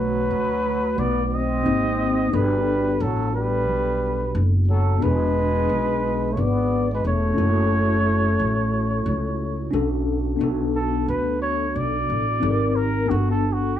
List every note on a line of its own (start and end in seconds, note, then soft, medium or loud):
0.00 0.27 B1 loud
0.00 1.61 D3 medium
0.00 0.99 F#3 loud
0.00 1.59 A3 medium
0.00 1.62 F#4 medium
0.00 1.01 B4 loud
0.31 0.94 D2 medium
0.97 1.61 B1 medium
0.97 1.25 B3 medium
0.97 1.27 D5 loud
1.25 1.34 B3 medium
1.25 1.36 D5 medium
1.32 2.35 C4 medium
1.32 2.36 D#5 loud
1.63 2.29 G#1 medium
1.63 2.31 A#3 medium
1.63 2.31 C4 medium
1.63 2.32 D#4 medium
1.63 2.33 G4 medium
2.28 4.95 B3 medium
2.28 4.97 D4 medium
2.33 2.97 G1 loud
2.33 3.02 G3 medium
2.33 4.98 F#4 medium
2.33 4.99 A4 medium
2.33 3.03 B4 loud
3.00 3.67 A1 medium
3.00 3.33 F#3 medium
3.00 3.34 A4 medium
3.34 4.39 G3 medium
3.34 4.39 B4 loud
3.67 4.31 B1 medium
4.35 4.98 F#1 medium
4.68 5.04 F#3 medium
4.68 5.05 A4 medium
4.98 5.66 E1 loud
4.98 7.32 B3 medium
4.98 7.33 D4 medium
5.02 6.33 G#3 medium
5.02 7.34 F#4 medium
5.02 7.35 G#4 medium
5.02 6.34 B4 loud
5.69 6.33 B1 medium
6.31 6.39 A3 medium
6.31 6.41 C#5 medium
6.37 7.01 G#1 medium
6.37 6.91 B3 medium
6.37 6.92 D5 loud
6.91 7.03 G#3 medium
6.91 7.05 B4 medium
7.04 7.36 E1 medium
7.04 9.70 A3 medium
7.04 9.71 C#5 medium
7.34 8.35 F#1 medium
7.34 9.68 C#4 medium
7.34 9.69 E4 medium
7.38 9.70 F#4 medium
7.38 9.71 A4 medium
8.39 9.03 A1 medium
9.06 9.70 C#2 medium
9.71 10.37 B1 loud
9.71 10.40 C#4 medium
9.71 10.37 D4 medium
9.71 10.40 F#4 medium
9.71 10.41 A4 medium
10.36 12.37 B3 medium
10.36 12.38 D4 medium
10.41 11.05 B1 medium
10.41 12.39 F#4 medium
10.41 12.40 A4 medium
10.76 11.06 A4 medium
11.08 11.72 D2 medium
11.08 11.40 B4 medium
11.42 11.78 C#5 loud
11.76 12.08 B1 medium
11.76 12.77 D5 loud
12.10 12.41 A1 medium
12.40 13.07 G#1 loud
12.40 13.09 C4 medium
12.40 13.09 D#4 medium
12.40 13.10 G4 medium
12.40 12.51 A4 medium
12.50 13.14 A#4 medium
12.76 13.11 A#4 medium
13.06 13.80 B3 medium
13.06 13.80 D4 medium
13.06 13.30 F#4 medium
13.11 13.75 G1 medium
13.11 13.80 F#4 medium
13.11 13.80 A4 medium
13.31 13.54 A4 loud
13.53 13.78 F#4 medium
13.77 13.80 G4 medium